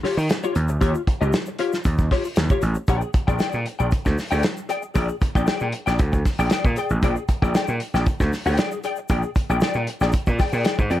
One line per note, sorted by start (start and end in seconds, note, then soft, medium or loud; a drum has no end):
0.03 0.19 F4 medium
0.03 0.17 G4 medium
0.03 0.16 C#5 medium
0.03 muted slap bass stroke soft
0.03 snare soft
0.03 open hi-hat medium
0.17 0.28 D#3 loud
0.17 muted clean electric guitar stroke soft
0.17 shaker medium
0.29 muted clean electric guitar stroke soft
0.29 snare loud
0.29 closed hi-hat loud
0.29 shaker medium
0.43 0.54 F4 medium
0.43 0.55 G4 medium
0.43 0.55 C#5 medium
0.43 shaker medium
0.55 0.69 D#2 loud
0.55 muted clean electric guitar stroke soft
0.55 closed hi-hat medium
0.55 shaker medium
0.68 0.80 D2 medium
0.68 muted clean electric guitar stroke medium
0.68 shaker medium
0.81 0.94 D#2 loud
0.81 1.00 F4 medium
0.81 0.95 G4 medium
0.81 0.93 C#5 loud
0.81 kick loud
0.81 closed hi-hat medium
0.81 shaker loud
0.95 muted clean electric guitar stroke soft
0.95 shaker medium
1.07 muted clean electric guitar stroke soft
1.07 kick medium
1.07 closed hi-hat medium
1.21 1.32 C#2 medium
1.21 1.35 F4 soft
1.21 1.35 G4 medium
1.21 1.35 D#5 medium
1.21 shaker medium
1.33 snare loud
1.33 closed hi-hat medium
1.33 shaker medium
1.46 muted clean electric guitar stroke soft
1.46 shaker medium
1.59 1.78 F4 medium
1.59 1.73 G4 medium
1.59 1.72 C#5 medium
1.59 closed hi-hat medium
1.72 muted clean electric guitar stroke medium
1.72 snare soft
1.72 shaker medium
1.84 2.08 D#2 loud
1.84 muted clean electric guitar stroke soft
1.84 kick loud
1.84 closed hi-hat medium
1.84 shaker medium
1.98 kick medium
1.98 shaker medium
2.11 2.26 F4 medium
2.11 2.24 G4 medium
2.11 2.23 C#5 medium
2.11 kick medium
2.11 snare soft
2.11 open hi-hat medium
2.25 muted clean electric guitar stroke soft
2.25 shaker medium
2.36 2.49 D#2 medium
2.36 muted clean electric guitar stroke soft
2.36 snare loud
2.36 closed hi-hat loud
2.36 shaker medium
2.49 2.61 F4 medium
2.49 2.62 G4 medium
2.49 2.62 C#5 medium
2.49 kick loud
2.49 shaker medium
2.62 2.75 A1 loud
2.62 muted clean electric guitar stroke soft
2.62 closed hi-hat medium
2.62 shaker medium
2.75 muted clean electric guitar stroke soft
2.75 shaker medium
2.88 3.01 A#1 loud
2.88 3.09 G#4 medium
2.88 3.02 D5 medium
2.88 3.01 G5 medium
2.88 kick loud
2.88 closed hi-hat medium
2.88 shaker medium
3.01 muted clean electric guitar stroke soft
3.01 shaker medium
3.13 muted clean electric guitar stroke soft
3.13 kick medium
3.13 closed hi-hat medium
3.13 shaker soft
3.27 3.39 A#1 loud
3.27 3.37 G#4 medium
3.27 3.38 D5 medium
3.27 3.39 G5 medium
3.27 kick medium
3.27 shaker medium
3.39 3.58 G#4 medium
3.39 3.59 D5 medium
3.39 3.59 G5 medium
3.39 muted slap bass stroke soft
3.39 snare loud
3.39 closed hi-hat medium
3.39 shaker medium
3.52 3.65 A#2 medium
3.52 shaker medium
3.66 muted clean electric guitar stroke soft
3.66 closed hi-hat medium
3.79 3.91 A#1 medium
3.79 3.89 G#4 soft
3.79 3.90 D5 medium
3.79 3.90 G5 medium
3.79 shaker medium
3.90 muted clean electric guitar stroke soft
3.90 muted slap bass stroke soft
3.90 kick loud
3.90 closed hi-hat medium
3.90 shaker medium
4.05 4.17 D2 loud
4.05 muted clean electric guitar stroke medium
4.05 kick medium
4.05 snare soft
4.05 shaker medium
4.18 snare soft
4.18 open hi-hat medium
4.18 shaker medium
4.31 4.42 D2 medium
4.31 4.42 G#4 medium
4.31 4.42 D5 medium
4.31 4.43 G5 medium
4.31 shaker medium
4.43 muted clean electric guitar stroke soft
4.43 snare loud
4.43 closed hi-hat loud
4.43 shaker medium
4.57 shaker medium
4.69 4.85 G#4 medium
4.69 4.82 D5 medium
4.69 4.81 G5 medium
4.69 closed hi-hat medium
4.69 shaker medium
4.82 muted clean electric guitar stroke soft
4.82 shaker medium
4.94 5.08 A#1 loud
4.94 5.14 G#4 medium
4.94 5.08 D5 medium
4.94 5.07 G5 medium
4.94 kick loud
4.94 closed hi-hat medium
4.94 shaker medium
5.08 muted clean electric guitar stroke medium
5.08 shaker medium
5.21 muted clean electric guitar stroke soft
5.21 kick loud
5.21 closed hi-hat medium
5.21 shaker soft
5.35 5.46 A#1 medium
5.35 5.45 G#4 medium
5.35 5.46 D5 medium
5.35 5.46 G5 medium
5.35 kick loud
5.35 shaker medium
5.46 5.66 G#4 medium
5.46 5.66 D5 medium
5.46 5.66 G5 medium
5.46 muted slap bass stroke soft
5.46 snare loud
5.46 closed hi-hat medium
5.46 shaker medium
5.60 5.72 A#2 medium
5.60 shaker soft
5.72 muted clean electric guitar stroke soft
5.72 closed hi-hat medium
5.86 5.98 A#1 medium
5.86 5.98 G#4 medium
5.86 5.99 D5 medium
5.86 5.99 G5 medium
5.86 snare soft
5.86 shaker medium
5.99 6.22 D2 medium
5.99 muted clean electric guitar stroke soft
5.99 kick loud
5.99 closed hi-hat medium
5.99 shaker medium
6.12 muted clean electric guitar stroke soft
6.12 kick medium
6.12 shaker medium
6.25 kick medium
6.25 snare soft
6.25 open hi-hat medium
6.25 shaker medium
6.39 6.50 A#1 medium
6.39 6.50 G#4 medium
6.39 6.51 D5 medium
6.39 6.51 G5 medium
6.39 shaker medium
6.50 6.70 G#4 medium
6.50 6.65 D5 medium
6.50 6.64 G5 loud
6.50 snare loud
6.50 closed hi-hat loud
6.50 shaker medium
6.64 6.75 A#2 loud
6.64 muted clean electric guitar stroke soft
6.64 kick loud
6.64 shaker soft
6.76 6.92 G#4 medium
6.76 6.91 D5 medium
6.76 6.90 G5 medium
6.76 closed hi-hat medium
6.76 shaker medium
6.90 7.01 A1 medium
6.90 muted clean electric guitar stroke soft
6.90 shaker medium
7.03 7.15 A#1 loud
7.03 7.22 G#4 medium
7.03 7.16 D5 medium
7.03 7.16 G5 medium
7.03 kick loud
7.03 closed hi-hat medium
7.03 shaker medium
7.16 muted clean electric guitar stroke medium
7.16 shaker medium
7.28 muted clean electric guitar stroke soft
7.28 kick medium
7.28 closed hi-hat medium
7.28 shaker soft
7.42 7.53 A#1 medium
7.42 7.53 G#4 medium
7.42 7.54 D5 medium
7.42 7.54 G5 medium
7.42 kick medium
7.42 shaker soft
7.54 7.73 G#4 medium
7.54 7.74 D5 medium
7.54 7.74 G5 medium
7.54 muted slap bass stroke soft
7.54 snare loud
7.54 closed hi-hat medium
7.54 shaker medium
7.67 7.79 A#2 medium
7.67 shaker medium
7.80 muted clean electric guitar stroke soft
7.80 closed hi-hat medium
7.94 8.05 A#1 loud
7.94 8.05 G#4 medium
7.94 8.05 D5 medium
7.94 8.06 G5 medium
7.94 snare soft
7.94 shaker medium
8.06 muted clean electric guitar stroke soft
8.06 kick loud
8.06 closed hi-hat medium
8.06 shaker medium
8.20 8.31 D2 medium
8.20 muted clean electric guitar stroke soft
8.20 kick medium
8.20 snare soft
8.20 shaker medium
8.33 snare soft
8.33 open hi-hat medium
8.33 shaker medium
8.46 8.57 D2 medium
8.46 8.56 G#4 medium
8.46 8.57 D5 medium
8.46 8.57 G5 medium
8.46 shaker medium
8.57 8.77 G#4 medium
8.57 8.72 D5 medium
8.57 8.71 G5 medium
8.57 snare loud
8.57 closed hi-hat loud
8.57 shaker medium
8.71 muted clean electric guitar stroke soft
8.71 shaker medium
8.83 8.99 G#4 medium
8.83 8.98 D5 medium
8.83 8.97 G5 medium
8.83 closed hi-hat medium
8.83 shaker medium
8.96 muted clean electric guitar stroke soft
8.96 shaker medium
9.09 9.22 A#1 loud
9.09 9.29 G#4 medium
9.09 9.23 D5 medium
9.09 9.23 G5 medium
9.09 kick loud
9.09 closed hi-hat medium
9.09 shaker medium
9.23 muted clean electric guitar stroke soft
9.23 shaker medium
9.35 muted clean electric guitar stroke soft
9.35 kick medium
9.35 closed hi-hat medium
9.35 shaker medium
9.49 9.60 A#1 loud
9.49 9.60 G#4 medium
9.49 9.61 D5 medium
9.49 9.62 G5 medium
9.49 shaker medium
9.60 9.81 G#4 medium
9.60 9.81 D5 loud
9.60 9.81 G5 medium
9.60 muted slap bass stroke soft
9.60 snare loud
9.60 closed hi-hat medium
9.60 shaker medium
9.73 9.86 A#2 medium
9.73 shaker medium
9.87 muted clean electric guitar stroke soft
9.87 closed hi-hat medium
10.00 10.12 A#1 medium
10.00 10.12 G#4 soft
10.00 10.12 D5 medium
10.00 10.13 G5 medium
10.00 snare soft
10.00 shaker medium
10.12 muted clean electric guitar stroke soft
10.12 kick loud
10.12 closed hi-hat medium
10.12 shaker medium
10.26 10.38 A#2 loud
10.26 muted clean electric guitar stroke soft
10.26 kick medium
10.26 shaker medium
10.39 10.52 G#4 medium
10.39 10.52 D5 medium
10.39 10.51 G5 medium
10.39 kick medium
10.39 snare soft
10.39 open hi-hat medium
10.39 shaker medium
10.52 10.64 A#2 medium
10.52 10.63 G#4 soft
10.52 10.63 D5 medium
10.52 10.64 G5 medium
10.52 shaker medium
10.64 10.83 G#4 medium
10.64 10.77 D5 medium
10.64 10.76 G5 medium
10.64 snare loud
10.64 closed hi-hat loud
10.64 shaker medium
10.77 10.90 G#2 medium
10.77 muted clean electric guitar stroke soft
10.77 kick loud
10.77 shaker medium
10.90 11.00 F2 medium
10.90 11.00 G#4 medium
10.90 11.00 D5 medium
10.90 11.00 G5 medium
10.90 closed hi-hat medium
10.90 shaker medium